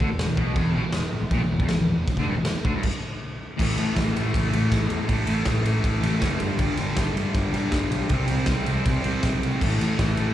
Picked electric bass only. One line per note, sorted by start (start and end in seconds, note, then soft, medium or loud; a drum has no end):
0.00 0.10 D2 loud
0.11 0.28 E1 medium
0.29 0.37 E1 medium
0.38 0.55 B1 medium
0.55 0.74 E1 loud
0.76 0.83 B1 loud
0.84 1.02 E1 medium
1.13 muted picked electric bass stroke soft
1.23 1.30 E1 medium
1.31 1.41 A#1 medium
1.42 1.50 E1 medium
1.51 1.59 E1 medium
1.60 1.69 E1 loud
1.70 1.79 E1 medium
1.80 1.89 E1 medium
1.90 2.07 E1 medium
2.07 muted picked electric bass stroke soft
2.16 2.26 D2 loud
2.26 2.34 G1 loud
2.35 2.53 E1 medium
2.55 muted picked electric bass stroke soft
2.65 2.73 D2 loud
2.74 2.83 G1 medium
3.60 3.71 A1 loud
3.78 3.90 A1 loud
3.96 4.08 A1 loud
4.16 4.27 A1 medium
4.34 4.46 A1 medium
4.52 4.64 A1 loud
4.72 4.84 A1 loud
4.89 5.01 E2 loud
5.08 5.20 A1 medium
5.27 5.39 A1 loud
5.46 5.58 A1 loud
5.65 5.77 A1 loud
5.84 5.96 A1 medium
6.02 6.14 A1 medium
6.21 6.33 F#1 loud
6.39 6.52 G1 loud
6.59 6.71 G1 loud
6.77 6.89 G1 loud
6.98 7.09 G1 loud
7.15 7.27 G1 medium
7.34 7.46 G1 medium
7.52 7.64 G1 loud
7.72 7.84 G1 loud
7.89 8.02 B1 loud
8.09 8.21 C2 loud
8.28 8.41 C2 loud
8.47 8.59 C2 loud
8.67 8.79 C2 loud
8.86 8.98 C2 medium
9.05 9.17 C2 loud
9.24 9.47 B1 loud
9.62 9.73 A1 loud
9.80 9.92 A1 loud
9.99 10.11 A1 loud
10.19 10.30 A1 medium